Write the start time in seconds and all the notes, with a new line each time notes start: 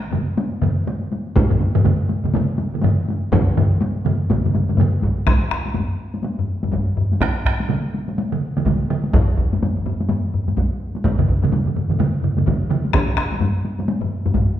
0.03 taiko high
0.12 taiko low-mid, taiko mid, taiko high
0.37 taiko high
0.53 taiko high
0.62 taiko low-mid, taiko mid, taiko high
0.87 taiko high
1.03 taiko high
1.12 taiko high
1.27 taiko high
1.36 taiko, taiko high
1.50 taiko low-mid, taiko mid, taiko high
1.60 taiko high
1.74 taiko low-mid, taiko mid, taiko high
1.84 taiko low-mid, taiko mid, taiko high
2.00 taiko high
2.09 taiko high
2.24 taiko low-mid, taiko mid, taiko high
2.34 taiko low-mid, taiko mid, taiko high
2.58 taiko high
2.74 taiko low-mid, taiko mid
2.82 taiko low-mid, taiko mid, taiko high
2.98 taiko high
3.08 taiko high
3.23 taiko high
3.32 taiko, taiko low-mid, taiko mid, taiko high
3.47 taiko high
3.57 taiko low-mid, taiko mid, taiko high
3.72 taiko high
3.81 taiko high
3.96 taiko high
4.05 taiko low-mid, taiko mid, taiko high
4.21 taiko high
4.30 taiko, taiko low-mid, taiko mid, taiko high
4.44 taiko low-mid, taiko mid, taiko high
4.54 taiko low-mid, taiko mid, taiko high
4.69 taiko low-mid, taiko mid, taiko high
4.77 taiko low-mid, taiko mid, taiko high
4.93 taiko high
5.02 taiko, taiko high
5.17 taiko high
5.27 taiko rim, taiko, taiko high
5.51 taiko rim, taiko
5.66 taiko high
5.74 taiko low-mid, taiko high
6.14 taiko high
6.23 taiko high
6.39 taiko low-mid
6.63 taiko low-mid, taiko high
6.72 taiko, taiko low-mid, taiko high
6.97 taiko low-mid
7.12 taiko high
7.21 taiko rim, taiko, taiko high
7.45 taiko rim, taiko
7.60 taiko high
7.70 taiko mid, taiko high
7.94 taiko high
8.08 taiko high
8.18 taiko high
8.32 taiko mid
8.57 taiko mid, taiko high
8.65 taiko, taiko mid, taiko high
8.90 taiko mid
9.04 taiko high
9.13 taiko, taiko low-mid, taiko high
9.37 taiko, taiko low-mid
9.52 taiko low-mid, taiko high
9.62 taiko low-mid, taiko high
9.77 taiko low-mid
9.86 taiko low-mid, taiko high
10.01 taiko high
10.09 taiko low-mid, taiko high
10.34 taiko low-mid
10.48 taiko low-mid, taiko high
10.57 taiko, taiko high
10.95 taiko high
11.04 taiko, taiko high
11.19 taiko low-mid, taiko mid
11.28 taiko
11.42 taiko low-mid, taiko mid, taiko high
11.52 taiko low-mid, taiko mid, taiko high
11.65 taiko low-mid, taiko mid
11.76 taiko low-mid, taiko mid
11.90 taiko low-mid, taiko mid, taiko high
11.99 taiko low-mid, taiko mid, taiko high
12.22 taiko low-mid, taiko mid
12.37 taiko low-mid, taiko mid, taiko high
12.46 taiko, taiko low-mid, taiko mid, taiko high
12.70 taiko low-mid, taiko mid
12.85 taiko high
12.93 taiko rim, taiko, taiko high
13.17 taiko rim, taiko
13.32 taiko high
13.40 taiko low-mid, taiko high
13.65 taiko high
13.79 taiko high
13.88 taiko high
14.01 taiko low-mid
14.26 taiko low-mid, taiko high
14.34 taiko, taiko low-mid, taiko high